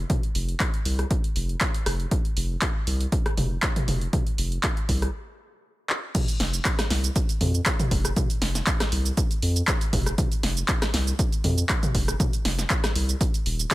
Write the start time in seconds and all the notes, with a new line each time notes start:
0.10 kick, closed hi-hat, mid tom
0.23 closed hi-hat
0.35 F1, open hi-hat
0.49 closed hi-hat
0.60 kick, clap, closed hi-hat
0.74 closed hi-hat
0.85 C2, open hi-hat
0.99 cross-stick, closed hi-hat
1.11 kick, closed hi-hat
1.24 closed hi-hat
1.36 F1, open hi-hat
1.49 closed hi-hat
1.61 kick, clap, closed hi-hat
1.74 closed hi-hat
1.86 F1, cross-stick, open hi-hat
2.00 closed hi-hat
2.11 kick, closed hi-hat
2.25 closed hi-hat
2.37 F1, open hi-hat
2.62 kick, clap, closed hi-hat
2.87 C2, open hi-hat
3.01 closed hi-hat
3.12 kick, closed hi-hat
3.26 cross-stick, closed hi-hat
3.37 F1, mid tom, open hi-hat
3.63 kick, clap, closed hi-hat
3.76 closed hi-hat, mid tom
3.88 F1, mid tom, open hi-hat
4.01 closed hi-hat
4.13 kick, closed hi-hat, mid tom
4.27 closed hi-hat
4.38 F1, open hi-hat
4.52 closed hi-hat
4.63 kick, clap, closed hi-hat
4.77 closed hi-hat
4.89 C2, kick, open hi-hat
5.02 cross-stick, closed hi-hat
5.90 clap
6.15 kick, closed hi-hat, mid tom, crash, shaker
6.28 closed hi-hat, shaker
6.40 F1, snare, open hi-hat
6.53 closed hi-hat, shaker
6.65 kick, clap, closed hi-hat, shaker
6.79 cross-stick, snare, closed hi-hat, shaker
6.90 C2, snare, open hi-hat
7.04 closed hi-hat, shaker
7.16 kick, closed hi-hat, shaker
7.29 closed hi-hat, shaker
7.41 F2, mid tom, open hi-hat
7.54 closed hi-hat, shaker
7.66 kick, cross-stick, clap, closed hi-hat, shaker
7.79 closed hi-hat, mid tom, shaker
7.91 F1, kick, open hi-hat
8.05 cross-stick, closed hi-hat, shaker
8.16 kick, closed hi-hat, mid tom, shaker
8.30 closed hi-hat, shaker
8.42 F1, snare, open hi-hat
8.55 snare, closed hi-hat, shaker
8.67 kick, clap, closed hi-hat, shaker
8.80 cross-stick, snare, closed hi-hat, shaker
8.92 C2, open hi-hat
9.05 closed hi-hat, shaker
9.17 kick, closed hi-hat, shaker
9.31 closed hi-hat, shaker
9.42 F2, open hi-hat
9.56 closed hi-hat, shaker
9.68 kick, cross-stick, clap, closed hi-hat, shaker
9.81 closed hi-hat, shaker
9.93 F1, kick, mid tom, open hi-hat
10.06 cross-stick, closed hi-hat, shaker
10.18 kick, closed hi-hat, mid tom, shaker
10.32 closed hi-hat, shaker
10.43 F1, snare, open hi-hat
10.57 closed hi-hat, shaker
10.68 kick, clap, closed hi-hat, shaker
10.82 cross-stick, snare, closed hi-hat, shaker
10.94 C2, snare, open hi-hat
11.07 closed hi-hat, shaker
11.19 kick, closed hi-hat, shaker
11.32 closed hi-hat, shaker
11.44 F2, mid tom, open hi-hat
11.58 closed hi-hat, shaker
11.69 kick, cross-stick, clap, closed hi-hat, shaker
11.83 closed hi-hat, mid tom, shaker
11.95 F1, kick, open hi-hat
12.08 cross-stick, closed hi-hat, shaker
12.20 kick, closed hi-hat, mid tom, shaker
12.33 closed hi-hat, shaker
12.45 F1, snare, open hi-hat
12.59 snare, closed hi-hat, shaker
12.70 kick, clap, closed hi-hat, shaker
12.84 cross-stick, snare, closed hi-hat, shaker
12.95 C2, open hi-hat
13.09 closed hi-hat, shaker
13.21 kick, closed hi-hat, shaker
13.34 closed hi-hat, shaker
13.46 D#1, open hi-hat
13.59 closed hi-hat, shaker
13.71 kick, cross-stick, clap, closed hi-hat, shaker